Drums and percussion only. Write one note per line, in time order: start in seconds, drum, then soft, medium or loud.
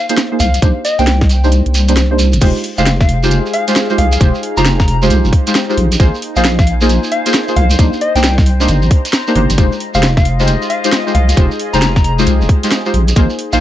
0.09 closed hi-hat medium
0.09 shekere medium
0.17 snare loud
0.17 closed hi-hat medium
0.17 shekere soft
0.40 open hi-hat loud
0.40 shekere medium
0.54 closed hi-hat medium
0.54 shekere soft
0.62 kick loud
0.62 closed hi-hat medium
0.62 shekere soft
0.85 open hi-hat loud
0.85 shekere medium
0.99 closed hi-hat soft
0.99 shekere soft
1.07 snare loud
1.07 closed hi-hat medium
1.07 shekere soft
1.21 kick loud
1.21 snare medium
1.29 open hi-hat loud
1.29 shekere medium
1.44 shekere medium
1.52 closed hi-hat medium
1.52 shekere soft
1.66 closed hi-hat soft
1.74 open hi-hat loud
1.74 shekere medium
1.88 closed hi-hat medium
1.88 shekere medium
1.97 snare loud
1.97 closed hi-hat medium
1.97 shekere soft
2.19 open hi-hat loud
2.19 shekere medium
2.33 closed hi-hat medium
2.33 shekere medium
2.41 kick loud
2.41 closed hi-hat medium
2.41 crash loud
2.41 shekere medium
2.56 shekere soft
2.64 open hi-hat loud
2.78 closed hi-hat soft
2.78 shekere medium
2.86 snare loud
2.86 closed hi-hat medium
2.86 shekere medium
3.01 kick loud
3.01 snare medium
3.01 shekere soft
3.09 open hi-hat medium
3.23 shekere medium
3.31 closed hi-hat medium
3.31 shekere medium
3.46 shekere soft
3.54 open hi-hat loud
3.68 closed hi-hat medium
3.68 shekere medium
3.76 snare loud
3.76 closed hi-hat medium
3.76 shekere medium
3.90 shekere soft
3.98 open hi-hat loud
4.12 closed hi-hat medium
4.12 shekere medium
4.20 kick loud
4.20 closed hi-hat medium
4.20 shekere medium
4.35 shekere soft
4.43 open hi-hat loud
4.57 closed hi-hat soft
4.57 shekere medium
4.65 snare loud
4.65 closed hi-hat medium
4.65 shekere medium
4.80 kick loud
4.80 snare medium
4.80 shekere soft
4.88 open hi-hat medium
5.02 shekere medium
5.10 closed hi-hat medium
5.10 shekere medium
5.25 shekere soft
5.33 kick loud
5.33 open hi-hat loud
5.47 closed hi-hat medium
5.47 shekere medium
5.55 snare loud
5.55 closed hi-hat medium
5.55 shekere medium
5.70 shekere soft
5.78 open hi-hat medium
5.92 closed hi-hat medium
5.92 shekere medium
6.00 kick loud
6.00 closed hi-hat medium
6.00 shekere medium
6.15 shekere soft
6.22 open hi-hat loud
6.36 closed hi-hat soft
6.36 shekere medium
6.45 snare loud
6.45 closed hi-hat medium
6.45 shekere medium
6.59 kick loud
6.59 snare medium
6.59 shekere soft
6.67 open hi-hat medium
6.81 shekere medium
6.89 closed hi-hat medium
6.89 shekere medium
7.03 shekere soft
7.12 open hi-hat loud
7.26 closed hi-hat medium
7.26 shekere medium
7.33 snare loud
7.33 closed hi-hat medium
7.33 shekere medium
7.48 shekere soft
7.57 open hi-hat medium
7.70 closed hi-hat medium
7.70 shekere medium
7.79 kick loud
7.79 closed hi-hat medium
7.79 shekere medium
7.93 shekere soft
8.01 open hi-hat medium
8.16 closed hi-hat soft
8.16 shekere medium
8.24 snare loud
8.24 closed hi-hat medium
8.24 shekere medium
8.38 kick loud
8.38 snare medium
8.38 shekere soft
8.46 open hi-hat medium
8.60 snare soft
8.60 shekere medium
8.68 closed hi-hat medium
8.68 shekere medium
8.82 shekere soft
8.91 kick loud
8.91 open hi-hat loud
9.05 closed hi-hat medium
9.05 shekere medium
9.13 snare loud
9.13 closed hi-hat medium
9.13 shekere medium
9.27 shekere soft
9.36 open hi-hat medium
9.50 closed hi-hat medium
9.50 shekere medium
9.58 kick loud
9.58 closed hi-hat medium
9.58 shekere medium
9.72 shekere soft
9.80 open hi-hat loud
9.94 closed hi-hat soft
9.94 shekere medium
10.03 snare loud
10.03 closed hi-hat medium
10.03 shekere medium
10.17 kick loud
10.17 snare medium
10.17 shekere soft
10.25 open hi-hat medium
10.40 shekere medium
10.47 closed hi-hat medium
10.47 shekere medium
10.62 shekere soft
10.70 open hi-hat loud
10.84 closed hi-hat medium
10.84 shekere medium
10.92 snare loud
10.92 closed hi-hat medium
10.92 shekere medium
11.07 shekere soft
11.15 open hi-hat medium
11.29 closed hi-hat medium
11.29 shekere medium
11.37 kick loud
11.37 closed hi-hat medium
11.37 shekere medium
11.51 shekere soft
11.60 open hi-hat loud
11.74 closed hi-hat soft
11.74 shekere medium
11.82 snare loud
11.82 closed hi-hat medium
11.82 shekere medium
11.96 kick loud
11.96 snare medium
11.96 shekere soft
12.04 open hi-hat medium
12.19 shekere medium
12.26 closed hi-hat medium
12.26 shekere medium
12.41 shekere soft
12.49 kick loud
12.49 open hi-hat loud
12.63 closed hi-hat medium
12.63 shekere medium
12.72 snare loud
12.72 closed hi-hat medium
12.72 shekere medium
12.86 shekere soft
12.94 open hi-hat medium
13.08 closed hi-hat medium
13.08 shekere medium
13.16 kick loud
13.16 closed hi-hat medium
13.16 shekere medium
13.30 shekere soft
13.39 open hi-hat loud
13.53 closed hi-hat soft
13.53 shekere medium